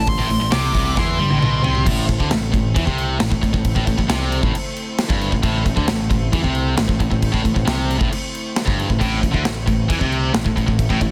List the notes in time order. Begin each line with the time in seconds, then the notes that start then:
Already playing: A1 A2 A3 C4 E4 D5
0.07 C6, kick, open hi-hat
0.18 A1 A2
0.29 A1 A2, open hi-hat
0.40 A1 A2
0.51 C2 C3 D6, snare, open hi-hat
0.74 C2 C3, kick, open hi-hat
0.96 E2 E3 C6, kick, snare
1.18 G2 G3, high tom
1.30 A1 A2, high tom
1.40 B1 B2, mid tom
1.63 C2 C3, floor tom
1.75 floor tom
1.85 A1 A2 A3 C4 E4 C5, kick, crash
2.07 A1 A2, kick, crash
2.20 D2 D3, kick
2.30 A1 A2, snare, crash
2.52 A1 A2, kick, crash
2.75 E2 E3, kick, crash
2.86 C2 C3, kick
2.98 crash
3.19 A1 A2, snare, crash
3.30 A1 A2, kick
3.42 A1 A2, kick, crash
3.53 A1 A2, kick
3.64 kick, crash
3.75 A1 A2, kick
3.87 A1 A2, kick, crash
3.98 A1 A2, kick
4.08 C2 C3, snare, crash
4.32 crash
4.43 A1 A2, kick
4.54 muted distorted electric guitar stroke, muted picked electric bass stroke, crash
4.76 crash
4.99 snare, crash
5.09 G1 G2, kick
5.21 crash
5.32 A1 A2, kick
5.43 A1 A2, kick, crash
5.65 A1 A2, kick, crash
5.76 D2 D3, kick
5.88 A1 A2, snare, crash
6.10 A1 A2, kick, crash
6.32 E2 E3, kick, crash
6.43 C2 C3, kick
6.55 crash
6.77 A1 A2, snare, crash
6.88 A1 A2, kick
6.99 A1 A2, kick, crash
7.10 A1 A2, kick
7.22 kick, crash
7.32 A1 A2, kick
7.43 A1 A2, kick, crash
7.54 A1 A2, kick
7.65 C2 C3, snare, crash
7.90 crash
7.98 A1 A2, kick
8.11 muted distorted electric guitar stroke, muted picked electric bass stroke, crash
8.35 crash
8.56 snare, crash
8.65 G1 G2, kick
8.79 crash
8.88 A1 A2, kick
8.99 A1 A2, kick, crash
9.22 A1 A2, kick, crash
9.31 D2 D3, kick
9.45 A1 A2, snare, crash
9.66 A1 A2, kick, crash
9.89 E2 E3, kick, crash
10.00 C2 C3, kick
10.12 crash
10.33 A1 A2, snare, crash
10.45 A1 A2, kick
10.56 A1 A2, kick, crash
10.67 A1 A2, kick
10.79 kick, crash
10.89 A1 A2, kick
11.01 A1 A2, kick, crash